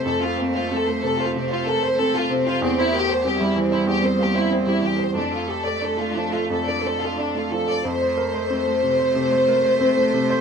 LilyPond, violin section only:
\new Staff \with { instrumentName = "Violin section" } { \time 4/4 \key f \major \tempo 4 = 92 a'16 f'16 c'16 f'16 a'16 c''16 a'16 f'16 c'16 f'16 a'16 c''16 a'16 f'16 c'16 f'16 | c'16 e'16 g'16 c''16 g'16 e'16 c'16 e'16 g'16 c''16 g'16 e'16 c'16 e'16 g'16 c''16 | d'16 f'16 a'16 d''16 a'16 f'16 d'16 f'16 a'16 d''16 a'16 f'16 d'16 f'16 a'16 d''16 | c''1 | }